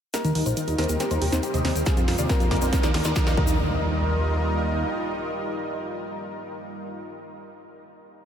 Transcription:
0.14 0.70 A#3 medium
0.14 0.21 G4 medium
0.14 0.70 A#4 medium
0.14 0.21 D#5 medium
0.14 snare soft
0.14 closed hi-hat medium
0.14 riser medium
0.14 shaker medium
0.24 0.32 D#2 medium
0.24 0.31 D#3 medium
0.24 0.32 D#4 medium
0.24 closed hi-hat medium
0.24 shaker soft
0.35 0.43 D#2 loud
0.35 0.43 D#4 medium
0.35 0.45 D#4 medium
0.35 open hi-hat loud
0.46 0.54 A#1 medium
0.46 0.54 D#4 medium
0.46 0.54 C5 medium
0.46 closed hi-hat medium
0.46 shaker medium
0.57 0.63 D#3 medium
0.57 0.65 D#4 medium
0.57 closed hi-hat medium
0.57 shaker medium
0.68 0.75 D#2 medium
0.68 0.75 D#4 medium
0.68 0.77 D#4 medium
0.68 closed hi-hat medium
0.68 shaker soft
0.78 0.86 D#2 loud
0.78 1.34 A#3 medium
0.78 0.86 D#4 medium
0.78 1.35 A#4 medium
0.78 0.86 C5 medium
0.78 snare medium
0.78 open hi-hat medium
0.84 closed hi-hat medium
0.89 0.97 D#2 medium
0.89 0.96 D#3 medium
0.89 0.97 G4 medium
0.89 closed hi-hat medium
0.89 shaker medium
1.00 1.10 C4 medium
1.00 1.08 G4 medium
1.00 snare medium
1.00 closed hi-hat medium
1.00 shaker medium
1.11 1.18 D#2 medium
1.11 1.19 D#4 medium
1.11 1.19 C5 medium
1.11 closed hi-hat medium
1.11 shaker soft
1.22 1.29 D#2 loud
1.22 1.28 C3 medium
1.22 1.29 G4 medium
1.22 open hi-hat loud
1.32 1.40 D#2 medium
1.32 1.42 C4 medium
1.32 1.40 D#4 medium
1.32 1.40 C5 medium
1.32 snare medium
1.32 closed hi-hat medium
1.32 shaker medium
1.43 2.21 G3 medium
1.43 2.21 G4 medium
1.43 1.51 G4 medium
1.43 closed hi-hat medium
1.43 shaker medium
1.54 1.61 D#2 medium
1.54 1.61 C3 medium
1.54 1.62 C5 medium
1.54 1.62 D#5 medium
1.54 closed hi-hat medium
1.54 shaker soft
1.65 1.72 D#2 loud
1.65 1.75 C4 medium
1.65 1.73 G4 medium
1.65 snare medium
1.65 open hi-hat medium
1.75 1.83 D#2 medium
1.75 1.83 G4 medium
1.75 closed hi-hat medium
1.75 shaker medium
1.86 1.93 C3 medium
1.86 1.94 G#4 medium
1.86 1.94 F5 loud
1.86 kick loud
1.86 snare medium
1.86 closed hi-hat medium
1.86 shaker medium
1.97 2.05 F2 medium
1.97 2.07 C4 medium
1.97 2.05 F4 medium
1.97 closed hi-hat medium
1.97 shaker soft
2.08 2.15 F2 loud
2.08 2.16 F4 medium
2.08 snare medium
2.08 open hi-hat loud
2.18 2.26 D#2 medium
2.18 2.25 C3 medium
2.18 2.26 F4 medium
2.18 2.26 D5 medium
2.18 closed hi-hat medium
2.18 shaker medium
2.29 3.37 A#3 medium
2.29 2.39 C4 medium
2.29 2.37 F4 medium
2.29 3.36 A#4 medium
2.29 kick loud
2.29 snare medium
2.29 closed hi-hat medium
2.29 shaker medium
2.40 2.48 F2 medium
2.40 2.48 F4 medium
2.40 closed hi-hat medium
2.40 shaker soft
2.51 2.59 F2 loud
2.51 2.58 C3 medium
2.51 2.59 A#4 medium
2.51 2.59 D5 medium
2.51 kick medium
2.51 snare medium
2.51 open hi-hat medium
2.56 closed hi-hat medium
2.62 2.69 F2 medium
2.62 2.72 C4 medium
2.62 2.70 A#4 medium
2.62 closed hi-hat medium
2.62 shaker medium
2.72 2.80 A#4 medium
2.72 kick loud
2.72 snare medium
2.72 closed hi-hat medium
2.72 shaker medium
2.83 2.91 D#2 medium
2.83 2.90 D#3 medium
2.83 2.91 A#4 medium
2.83 2.91 D5 medium
2.83 snare medium
2.83 closed hi-hat medium
2.83 shaker soft
2.94 3.02 D#2 loud
2.94 3.04 D#4 medium
2.94 3.02 A#4 medium
2.94 snare loud
2.94 open hi-hat loud
3.04 3.13 D#2 medium
3.04 3.13 A#4 medium
3.04 3.13 D5 medium
3.04 snare medium
3.04 closed hi-hat medium
3.04 shaker medium
3.16 3.22 D#3 medium
3.16 3.24 A#4 medium
3.16 kick loud
3.16 snare loud
3.16 closed hi-hat medium
3.16 shaker medium
3.27 3.34 D#2 medium
3.27 3.36 D#4 medium
3.27 3.34 D5 medium
3.27 3.34 F5 medium
3.27 snare medium
3.27 closed hi-hat medium
3.27 shaker soft
3.37 4.85 D#2 loud
3.37 3.78 D#3 medium
3.37 6.99 G3 medium
3.37 6.99 D#4 medium
3.37 6.99 F4 medium
3.37 6.99 A#4 medium
3.37 6.99 D#5 loud
3.37 kick loud
3.37 impact medium
3.47 shaker medium

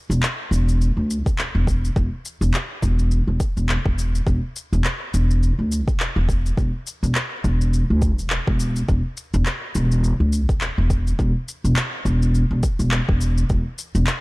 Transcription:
0.10 0.18 E1 medium
0.10 shaker soft
0.23 clap loud
0.23 shaker soft
0.51 0.88 E1 loud
0.51 shaker medium
0.69 shaker soft
0.81 shaker soft
0.97 1.26 D2 medium
1.11 shaker medium
1.26 1.44 E1 medium
1.26 kick loud
1.26 shaker soft
1.39 clap medium
1.39 shaker soft
1.55 1.89 E1 medium
1.67 kick loud
1.67 shaker medium
1.85 shaker soft
1.96 2.07 E1 medium
1.96 kick loud
1.96 shaker soft
2.25 shaker medium
2.41 2.49 E1 medium
2.41 shaker soft
2.54 clap loud
2.54 shaker soft
2.83 3.19 E1 loud
2.83 kick medium
2.83 shaker medium
2.99 shaker soft
3.11 shaker soft
3.27 3.36 E1 medium
3.40 kick loud
3.40 shaker medium
3.57 3.74 E1 medium
3.57 shaker soft
3.69 clap medium
3.69 shaker soft
3.86 4.20 E1 medium
3.86 kick loud
3.99 shaker medium
4.15 shaker soft
4.27 4.38 E1 medium
4.27 kick loud
4.27 shaker soft
4.56 shaker medium
4.73 4.81 E1 medium
4.73 shaker soft
4.84 clap medium
4.84 shaker soft
5.14 5.50 E1 loud
5.14 shaker medium
5.31 shaker soft
5.43 shaker soft
5.59 5.88 D2 medium
5.72 shaker medium
5.88 6.05 E1 medium
5.88 kick loud
5.88 shaker soft
6.00 clap medium
6.00 shaker soft
6.16 6.51 E1 medium
6.29 kick loud
6.29 shaker medium
6.46 shaker soft
6.57 6.69 E1 medium
6.57 kick loud
6.57 shaker soft
6.87 shaker medium
7.03 7.11 E1 medium
7.03 shaker soft
7.15 clap medium
7.15 shaker soft
7.44 7.81 E1 loud
7.44 kick medium
7.44 shaker medium
7.61 shaker soft
7.74 shaker soft
7.90 8.19 D2 medium
8.02 kick loud
8.02 shaker medium
8.19 8.36 E1 medium
8.19 shaker soft
8.30 clap medium
8.30 shaker soft
8.47 8.82 E1 medium
8.47 kick loud
8.60 shaker medium
8.76 shaker soft
8.89 9.00 E1 medium
8.89 kick loud
8.89 shaker soft
9.17 shaker medium
9.34 9.42 E1 loud
9.34 shaker soft
9.46 clap medium
9.46 shaker soft
9.75 10.12 E1 loud
9.75 shaker medium
9.92 shaker soft
10.04 shaker soft
10.20 10.49 D2 medium
10.33 shaker medium
10.49 10.67 E1 medium
10.49 kick loud
10.49 shaker soft
10.61 clap medium
10.61 shaker soft
10.78 11.13 E1 medium
10.90 kick medium
10.90 shaker medium
11.07 shaker soft
11.19 11.30 E1 loud
11.19 kick loud
11.19 shaker soft
11.48 shaker medium
11.64 11.73 E1 medium
11.64 shaker soft
11.76 clap loud
11.76 shaker soft
12.05 12.42 E1 loud
12.05 kick medium
12.05 shaker medium
12.22 shaker soft
12.35 shaker soft
12.51 12.59 E1 medium
12.63 kick medium
12.63 shaker medium
12.79 12.97 E1 medium
12.79 shaker soft
12.91 clap medium
12.91 shaker soft
13.09 13.43 E1 medium
13.09 kick loud
13.21 shaker medium
13.38 shaker soft
13.50 13.61 E1 medium
13.50 kick loud
13.50 shaker soft
13.78 shaker medium
13.95 14.03 E1 medium
13.95 shaker soft
14.07 clap loud
14.07 shaker soft

